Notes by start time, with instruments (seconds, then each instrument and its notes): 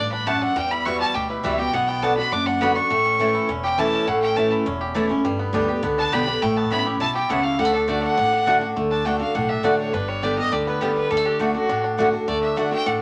Already playing: upright bass A1, steel-string acoustic guitar G2
0.00 five-string banjo D4
0.12 five-string banjo D4, fiddle B5
0.26 steel-string acoustic guitar F#2, mandolin A3 E4 D5 F#5, five-string banjo A3, fiddle A5
0.42 five-string banjo D4, fiddle F#5
0.56 steel-string acoustic guitar E2, upright bass E2, five-string banjo G3, fiddle G5
0.71 five-string banjo E4, fiddle B5
0.84 steel-string acoustic guitar E3 G3 B3 F#4, mandolin G3 E4 B4 E5, fiddle C#6
1.00 five-string banjo G3, fiddle A5
1.15 upright bass D2, steel-string acoustic guitar B2, five-string banjo G4, fiddle G5
1.30 five-string banjo E4, fiddle B4
1.43 upright bass C#2, steel-string acoustic guitar E3 G3 B3 F#4, mandolin G3 E4 B4 E5, five-string banjo G3, fiddle E5
1.58 steel-string acoustic guitar B3 F#4, five-string banjo G4, fiddle G5
1.73 upright bass B1, steel-string acoustic guitar B2, five-string banjo B3, fiddle F#5
1.88 five-string banjo B3, fiddle G5
2.02 steel-string acoustic guitar D3 B3 D4 F#4, mandolin B3 F#4 D5 F#5, five-string banjo D4, fiddle A5
2.17 five-string banjo D4, steel-string acoustic guitar D4 F#4, fiddle B5
2.32 upright bass F#1, steel-string acoustic guitar F#2, five-string banjo D4, fiddle D6
2.46 five-string banjo D4, fiddle F#5
2.61 steel-string acoustic guitar D3 B3 D4 F#4, mandolin B3 F#4 D5 F#5, five-string banjo B3, fiddle B5
2.76 five-string banjo D4, steel-string acoustic guitar D4 F#4, fiddle C#6
2.90 upright bass A1, steel-string acoustic guitar A2, five-string banjo A3
3.06 five-string banjo C#4
3.19 steel-string acoustic guitar E3 A3 C#4 E4, mandolin A3 E4 C#5 A5, five-string banjo A3
3.35 five-string banjo E4
3.49 upright bass E1, steel-string acoustic guitar E2, five-string banjo C#4
3.64 five-string banjo G4, fiddle G5
3.78 steel-string acoustic guitar E3 A3 C#4 E4, mandolin A3 E4 C#5 A5, five-string banjo E4, fiddle A5
3.93 five-string banjo C#4
4.07 upright bass A1, steel-string acoustic guitar A2, five-string banjo A3, fiddle F#5
4.22 five-string banjo C#4, fiddle G5
4.36 steel-string acoustic guitar E3 A3 C#4 E4, mandolin A3 E4 C#5 A5, five-string banjo A3, fiddle A5
4.52 five-string banjo E4
4.66 upright bass E1, steel-string acoustic guitar E2, five-string banjo C#4
4.81 five-string banjo G4
4.95 steel-string acoustic guitar E3 A3 C#4 E4, mandolin A3 E4 C#5 A5, five-string banjo E4
5.09 five-string banjo C#4, steel-string acoustic guitar C#4 E4
5.25 upright bass G1, steel-string acoustic guitar G2, five-string banjo G3
5.39 five-string banjo B3
5.53 upright bass D2, steel-string acoustic guitar D3 G3 B3 G4, mandolin B3 G4 D5 G5, five-string banjo D4
5.68 steel-string acoustic guitar B3 G4, five-string banjo G4
5.83 upright bass C#2, steel-string acoustic guitar D3, five-string banjo B3
5.98 five-string banjo D4, fiddle A5
6.12 upright bass B1, steel-string acoustic guitar D3 G3 B3 G4, mandolin B3 G4 D5 G5, five-string banjo G4, fiddle B5
6.27 steel-string acoustic guitar B3 G4, five-string banjo D4
6.42 upright bass A1, steel-string acoustic guitar A2, five-string banjo A3, fiddle G5
6.57 five-string banjo B3, fiddle A5
6.70 upright bass A1, steel-string acoustic guitar E3 B3 C#4 E4, mandolin B3 E4 C#5 A5, five-string banjo E4, fiddle B5
6.86 steel-string acoustic guitar C#4 E4, five-string banjo G4
7.00 upright bass B1, steel-string acoustic guitar B2, five-string banjo E4, fiddle A5
7.15 five-string banjo G4, fiddle G5
7.29 upright bass C#2, steel-string acoustic guitar C#3, five-string banjo A3, mandolin B3 E4 C#5 A5, fiddle F#5
7.44 five-string banjo E4, fiddle F5
7.59 upright bass D2, steel-string acoustic guitar D3, five-string banjo G3, fiddle F#5
7.65 five-string banjo A3
7.74 five-string banjo D4, fiddle A4
7.88 steel-string acoustic guitar D3 A3 D4 F#4, mandolin A3 F#4 D5 F#5, five-string banjo A3, fiddle D5
8.03 five-string banjo D4, fiddle F#5
8.18 upright bass A1, steel-string acoustic guitar A2, five-string banjo D4
8.33 five-string banjo D4
8.46 steel-string acoustic guitar D3 A3 D4 F#4, mandolin A3 F#4 D5 F#5, five-string banjo D4
8.61 five-string banjo D4, steel-string acoustic guitar D4 F#4
8.76 upright bass D2, steel-string acoustic guitar D3, five-string banjo A3
8.91 five-string banjo D4, fiddle A5
9.04 steel-string acoustic guitar D3 A3 D4 F#4, mandolin A3 F#4 D5 F#5, five-string banjo A3, fiddle G5
9.20 five-string banjo D4, steel-string acoustic guitar D4 F#4, fiddle F5
9.35 upright bass B1, steel-string acoustic guitar A2, five-string banjo D4, fiddle F#5
9.49 five-string banjo D4, fiddle E5
9.63 upright bass A1, steel-string acoustic guitar D3 A3 D4 F#4, mandolin A3 F#4 D5 F#5, five-string banjo D4, fiddle D5
9.79 five-string banjo D4, fiddle C#5
9.93 upright bass G1, steel-string acoustic guitar G2, five-string banjo D4, fiddle B4
10.08 five-string banjo G3, fiddle C#5
10.22 steel-string acoustic guitar D3 G3 B3 G4, mandolin B3 G4 D5 G5, five-string banjo D4, fiddle D5
10.37 five-string banjo G3, steel-string acoustic guitar B3 G4, fiddle D#5
10.52 upright bass D2, steel-string acoustic guitar D3, five-string banjo G4, fiddle D5
10.67 five-string banjo B3, fiddle B4
10.80 steel-string acoustic guitar D3 G3 B3 G4, five-string banjo G3, mandolin B3 G4 D5 G5, fiddle G4
10.96 five-string banjo D4, fiddle B4
11.11 upright bass D2, steel-string acoustic guitar D3, five-string banjo G3, fiddle A4
11.17 five-string banjo A3
11.26 five-string banjo D4, fiddle G4
11.39 steel-string acoustic guitar D3 A3 D4 F#4, mandolin A3 F#4 D5 F#5, five-string banjo A3, fiddle F#4
11.54 five-string banjo D4, steel-string acoustic guitar D4 F#4, fiddle F#4
11.69 upright bass A1, steel-string acoustic guitar A2, five-string banjo D4
11.84 five-string banjo D4
11.98 steel-string acoustic guitar D3 A3 D4 F#4, mandolin A3 F#4 D5 F#5, five-string banjo D4
12.13 five-string banjo D4, steel-string acoustic guitar D4 F#4
12.28 upright bass D2, steel-string acoustic guitar D3, five-string banjo A3, fiddle D5
12.42 five-string banjo D4, fiddle E5
12.56 steel-string acoustic guitar D3 A3 D4 F#4, mandolin A3 F#4 D5 F#5, five-string banjo D4, fiddle F#5
12.72 five-string banjo A3, steel-string acoustic guitar D4 F#4, fiddle G5
12.86 upright bass A1, steel-string acoustic guitar A2, five-string banjo D4, fiddle F#5